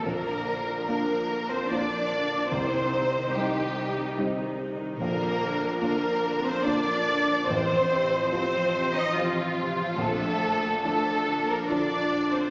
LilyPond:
<<
  \new Staff \with { instrumentName = "Violin section" } { \time 3/4 \key bes \major \tempo 4 = 72 bes'4 bes'8. c''16 d''4 | c''4 g'4 r4 | bes'4 bes'8. c''16 d''4 | c''4 c''8. ees''16 f'4 |
a'4 a'8. bes'16 d''8. c''16 | }
  \new Staff \with { instrumentName = "Violin section" } { \time 3/4 \key bes \major bes'4 bes'8. c''16 d''4 | c''4 g'4 r4 | bes'4 bes'8. c''16 d''4 | c''4 c''8. ees''16 f'4 |
a'4 a'8. bes'16 d''8. c''16 | }
  \new Staff \with { instrumentName = "Cello section" } { \time 3/4 \key bes \major bes4 bes8. c'16 d'4 | c'4 g4 r4 | bes4 bes8. c'16 d'4 | c'4 c'8. ees'16 f4 |
a4 a8. bes16 d'8. c'16 | }
  \new Staff \with { instrumentName = "Felt piano" } { \time 3/4 \key bes \major bes,,4 <bes d' f'>4 <bes d' f'>4 | c,4 <g c' ees'>4 <g c' ees'>4 | bes,,4 <bes d' f'>4 <bes d' f'>4 | a,,4 <f c' f'>4 <f c' f'>4 |
bes,,4 <f d' f'>4 <f d' f'>4 | }
  \new Staff \with { instrumentName = "Viola section" } { \clef bass \time 3/4 \key bes \major << { d'2. | ees'2. | d'2. | c'2. |
d'2. | } \\ { d16 f16 d16 f16 d16 f16 d16 f16 d16 f16 d16 f16 | c16 ees16 c16 ees16 c16 ees16 c16 ees16 c16 ees16 c16 ees16 | d16 f16 d16 f16 d16 f16 d16 f16 d16 f16 d16 f16 | c16 f16 c16 f16 c16 f16 c16 f16 c16 f16 c16 f16 |
d16 f16 d16 f16 d16 f16 d16 f16 d16 f16 d16 f16 | } >> }
  \new Staff \with { instrumentName = "Double bass section" } { \clef bass \time 3/4 \key bes \major bes,,4 r2 | c,4 r2 | bes,,4 r2 | a,,4 r2 |
bes,,4 r2 | }
>>